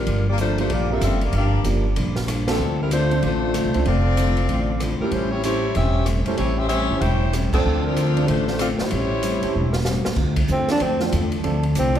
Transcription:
Already playing: G3 F4
0.00 D4 A#4
0.07 G1 G2 F3 A#3 D4, ride
0.30 A#3 F4 G4 D5
0.38 G2 F3 A3 A#3 D4 F4 C5, hi-hat pedal, ride
0.58 G3 A3 A#3 D4 F4 A#4 C5, ride
0.69 A#1 G2 F3 A#3 D4 F4 D5, ride
0.73 G4
0.91 G3 A#3 C4 D4 F4 A4 A#4 E5
1.01 F#1 G2 F3 A#3 D4 F4 E5, cross-stick, hi-hat pedal, ride
1.05 C4 A4
1.21 A#3 G4, ride
1.25 F4 D5
1.33 G1 G2 F3 A#3 D4 F5, ride
1.37 D4 G4 A#4
1.64 F#1 G2 F3 G3 A#3 D4 F4 A#4, hi-hat pedal, ride
1.95 A#1 G2 F3 A#3 D4, ride
2.16 snare
2.27 G2 F3 A#3 D4, cross-stick, hi-hat pedal, ride
2.48 F3 A3 C4 D4 F4 A4, snare, ride
2.59 D2 D3 A3 C4 F4
2.82 G3 C4 E4 A#4
2.91 D3 A3 C4 D4 F4 C5, hi-hat pedal, ride
3.11 A3 C4 D4 F4 C5, ride
3.22 A1 D3 A3 C4 F4 C5, ride
3.26 D4 F4
3.54 D3 A3 C4 F4, cross-stick, hi-hat pedal, ride
3.65 C2
3.74 C#2 A3 C4 D4 F4 C5, ride
3.85 F1 D3 A3 C4 F4 A4 D5, ride
4.17 D3 A3 C4 D4 F4 C5, hi-hat pedal, ride
4.37 ride
4.49 A1 D3 A3 C4, ride
4.53 F4
4.80 D3 A3 C4 F4, cross-stick, hi-hat pedal, ride
5.00 G3 A3 C4 C#4 E4 G4 A#4 C5, muted upright bass stroke
5.11 A1 A2 G3 C4 C#4 E4 C5, ride
5.31 G3 C4 E4 C#5
5.44 A2 G3 A3 C4 C#4 E4 G4 C5 C#5, hi-hat pedal, ride
5.75 E1 A2 G3 C4 C#4 G4 C5 E5, ride
6.06 A2 G3 C4, cross-stick, hi-hat pedal, ride
6.10 C#4
6.26 G3 A3 C#4 E4 G4 A4 C5, muted upright bass stroke, ride
6.38 A1 A2 G3 C4 C#4 E4 C#5, ride
6.59 C#4 G4 C5 E5
6.69 A2 G3 C4 C#4 G4 C5 E5, hi-hat pedal, ride
6.90 G1 A3 C#4 E4 G4 C5
7.01 E1 A2 G3 C4 C#4 E4 C5 C#5 G5, ride
7.33 A2 G3 C4 C#4, cross-stick, hi-hat pedal, ride
7.53 F3 A3 C4 D4 F4 A4 C5, muted upright bass stroke, kick, crash
7.65 D2 D3 A3 C4 F4
7.86 F3 C4 D4 A#4
7.96 D3 A3 C4 F4, hi-hat pedal, ride
8.17 A3 C4 D4 F4 C5, ride
8.27 A1 D3 A3 C4 D4 F4 C5, ride
8.32 F4
8.48 A3 D4 F4 C5, snare
8.59 D3 A3 C4 F4 A4 D5, cross-stick, hi-hat pedal, ride
8.79 G3 E4 C5 C#5, muted upright bass stroke, snare
8.91 A1 A2 G3 C4 C#4, ride
9.23 A2 G3 C4 C#4, hi-hat pedal, ride
9.43 A3 C#4 E4 G4 C5, muted upright bass stroke, ride
9.55 E1 A2 G3 C4 C#4
9.73 snare
9.85 A2 G3, snare, hi-hat pedal
9.89 C4 C#4
10.05 muted upright bass stroke, snare
10.16 D2 D3 A3 C4 F4, kick, crash
10.36 kick, ride
10.48 E2 D3 A3 C4, hi-hat pedal
10.52 F4
10.68 F3 A3 C4 D4 A4, snare, ride
10.80 F2 D3 A3 C4, ride
10.84 F4
11.00 F3 A3 C4 D4 C5, snare
11.12 E2 D3 A3 C4 F4, hi-hat pedal, ride
11.32 ride
11.43 D2 D3 F3 A3 C4 D4 F4 A4, ride
11.63 ride
11.75 C2 D3 A3 C4 F4, hi-hat pedal, ride
11.95 F3 A3 C4 D4 C5, ride

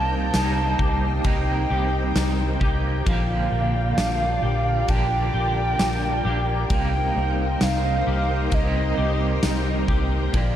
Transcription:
Already playing: C2 C3 G3 A#3 D#4 G4 A#4 C5 G5 A5
0.32 C2 G3 A#3 D#4, snare, ride, tambourine
0.37 G4
0.79 C2 G4, kick
1.24 C2 C3 G3 A#3 D#4 G4 G5, kick, ride
1.70 C2 G4
2.15 C2 D#4, snare, ride, tambourine
2.60 C2 D#4 G4, kick
2.65 A#3
3.05 A#1 A#2 D3 F3 F4 A#4 D5 F5, kick, ride
3.10 A#3 D4 G4
3.52 A#1 A#3
3.97 A#1 D4, snare, ride, tambourine
4.43 A#1 G4
4.88 A#1 A#2 D3 F3 A#3 D4 G4 G5, kick, ride
5.34 A#1 G4
5.79 A#1 D4, snare, ride, tambourine
6.24 A#1 A#3 D4 G4
6.29 F3
6.68 C2 C3 G3 A#3 D#4 C5 G5, kick, ride
6.72 A#3 D#4 G4
7.16 C2 A#3
7.61 C2 D#4 F5, snare, ride, tambourine
8.07 C2 G4
8.50 C2 C3 G3 D#4, kick, ride
8.54 A#3 D#4 G4 D#5
8.98 C2 G4
9.43 C2 D#4, snare, ride, tambourine
9.88 C2 G4, kick
10.33 A#1 A#2 D3 F3 A#3 D4 F4 G4 D5 G5, kick, ride

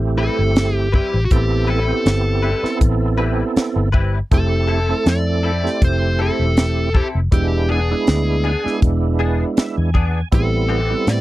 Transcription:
Already playing: A1 A3 C4 E4 G4
0.18 G3 C4 E4 A4 B4
0.39 G1
0.56 snare, closed hi-hat
0.75 G4
0.92 G3 C4 E4 G4 B4, kick
1.14 A1
1.25 F#4
1.31 A1 B3 C4 E4 G4 A4, kick, closed hi-hat
1.67 G3 C4 E4 A4 B4
1.88 B3 C4 E4 G4
2.06 G1, snare, closed hi-hat
2.42 G3 C4 E4 B4
2.63 B3 C4 E4 A4, muted fingered electric bass stroke, snare
2.81 A1, kick, closed hi-hat
3.18 G3 C4 E4 B4
3.56 muted fingered electric bass stroke, snare, closed hi-hat
3.76 G1
3.92 G3 C4 E4 B4, kick
4.31 F1 A3 C4 E4 G4 A4, kick, closed hi-hat
4.68 C4 E4 A4
4.89 A3 C4 E4 A4
5.06 F2 D5, snare, closed hi-hat
5.43 C4 E4 A4
5.64 A3 C4 E4 G4, snare
5.82 F1 C5, kick, closed hi-hat
6.19 C4 E4 A4
6.39 E1
6.57 snare, closed hi-hat
6.94 C4 E4 G4 A4, kick
7.15 F1
7.31 E1 G#3 B3 D4 E4 G4, kick, closed hi-hat
7.69 B3 D4 G#4
7.90 G#3 B3 D4 E4
8.07 D2, snare, closed hi-hat
8.44 B3 D4 G#4
8.64 G#3 B3 D4 E4, muted fingered electric bass stroke, snare
8.82 E1, kick, closed hi-hat
9.19 B3 D4 G#4
9.57 E5, muted fingered electric bass stroke, snare, closed hi-hat
9.77 E2 G#5
9.94 B3 D4 G#4, kick
10.32 A1 G3 B3 C4 E4 A4, kick, closed hi-hat
10.69 E3 B3 C4 G4
10.90 G3 B3 C4 E4
11.07 A2 D5, snare, closed hi-hat

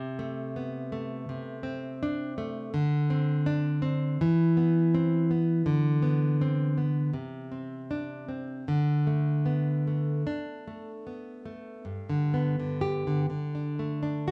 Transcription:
Already playing: C3
0.19 A3
0.56 B3
0.92 A3
1.29 C3
1.63 C4
2.03 D4
2.38 A3
2.74 D3
3.10 C4
3.46 D4
3.82 C4
4.21 E3
4.57 B3
4.95 C4
5.31 B3
5.66 D3
6.02 B3
6.41 C4
6.78 B3
7.14 C3
7.52 C4
7.91 D4
8.29 C4
8.68 D3
9.07 A3
9.46 B3
9.87 A3
10.27 D4
10.68 A3
11.07 B3
11.45 A3
11.85 G2
12.10 D3
12.34 B3
12.60 D3
12.81 G4
13.07 D3
13.30 D3
13.55 D4
13.79 A3
14.03 D4
14.28 F#4

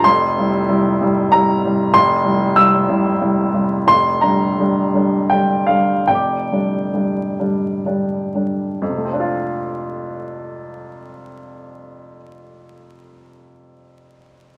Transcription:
0.04 F1 F2 C6
0.37 C3 G3 E4
0.69 C3 G3 E4
1.01 C3 G3 E4
1.32 C3 G3 E4 A#5
1.65 C3 G3 E4
1.94 F1 F2 C6
2.24 C3 G3 E4
2.56 C3 G3 E4 E6
2.88 C3 G3 E4
3.21 C3 G3 E4
3.54 C3 G3 E4
3.87 F1 F2 C6
4.21 D3 G3 D4 A#5
4.60 D3 G3 D4
4.94 D3 G3 D4
5.30 D3 G3 D4 G5
5.67 D3 G3 D4 F5
6.08 F1 F2 D5 G5
6.15 D6
6.52 D3 G3 D4
6.93 D3 G3 D4
7.40 D3 G3 D4
7.85 D3 G3 D4
8.35 D3 G3 D4
8.82 F2
8.89 C3
8.97 A3
9.05 C4
9.13 D4
9.20 F4

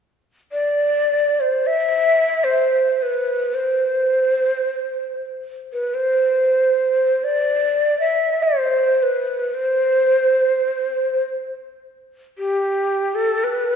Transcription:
0.52 D5
1.40 C5
1.67 E5
2.44 C5
3.02 B4
3.55 C5
5.73 B4
5.94 C5
7.24 D5
8.00 E5
8.43 C5
9.03 B4
9.54 C5
12.38 G4
13.15 A4
13.44 B4

